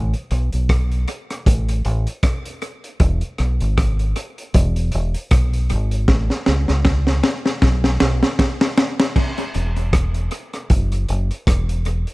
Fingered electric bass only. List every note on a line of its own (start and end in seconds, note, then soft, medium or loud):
0.00 0.13 A1 loud
0.31 0.52 B1 medium
0.54 1.05 B1 medium
1.47 1.83 A1 loud
1.86 2.06 A1 loud
3.01 3.21 E1 loud
3.40 3.60 B1 medium
3.61 4.13 G#1 medium
4.55 4.91 E1 loud
4.94 5.14 E1 loud
5.32 5.73 B1 medium
5.71 6.06 G#1 medium
6.09 6.29 A1 loud
6.48 6.68 C#2 medium
6.70 7.21 C#2 medium
7.63 7.99 B1 loud
8.02 8.22 B1 medium
9.55 10.28 E1 medium
10.71 11.06 F#1 loud
11.10 11.30 F#1 medium
11.47 12.04 E1 medium